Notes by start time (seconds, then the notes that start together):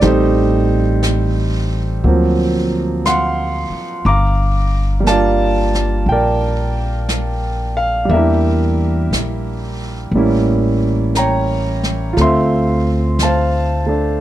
0.01 A1 G3 A3 C4 D#4 G4 C5, brush sweep, snare
1.03 brush sweep, snare, hi-hat pedal
2.04 D2 F#3 A#3 C4, brush sweep
2.08 F3
3.05 F5 F#5 C6, brush sweep, snare, hi-hat pedal
3.70 muted upright bass stroke
4.05 G1 F5 A#5 D6, brush sweep
5.00 G3 A#3
5.07 D4 D5 F5 A5, brush sweep, snare, hi-hat pedal
5.11 F4
5.74 snare
6.06 A#1 G5, brush sweep
6.12 A#4 D5
7.09 brush sweep, snare, hi-hat pedal
7.77 F5
8.05 G3 A#3, brush sweep
8.09 E2 D4 A#4 E5
8.14 E4 G4
9.11 A#1, brush sweep, snare, hi-hat pedal
10.11 A1, brush sweep
10.15 G3 A#3 C#4 E4
11.15 C#5 G5 A#5, brush sweep, snare, hi-hat pedal
11.83 snare
12.13 D2 A3 F4
12.17 C4, brush sweep, snare
12.21 E5 F5 C6
13.19 A5, brush sweep, snare, hi-hat pedal
13.24 C5 F5
13.86 A3 D4